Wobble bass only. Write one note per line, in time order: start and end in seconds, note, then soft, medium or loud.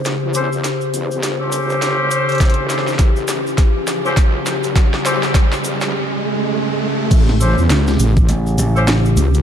0.00 0.20 A1 loud
0.23 0.62 E2 medium
0.93 1.21 E2 medium
1.23 2.09 G1 medium
2.41 2.81 A1 loud
2.81 2.98 G#1 loud
2.99 3.44 A1 medium
4.05 4.15 E2 loud
4.17 4.45 C#2 loud
4.46 4.91 A1 loud
4.93 5.33 E2 medium
5.64 5.92 E2 medium
7.11 7.55 A1 loud
7.58 7.68 E2 loud
7.70 7.97 C#2 medium
7.99 8.27 A1 medium
9.17 9.42 C#2 loud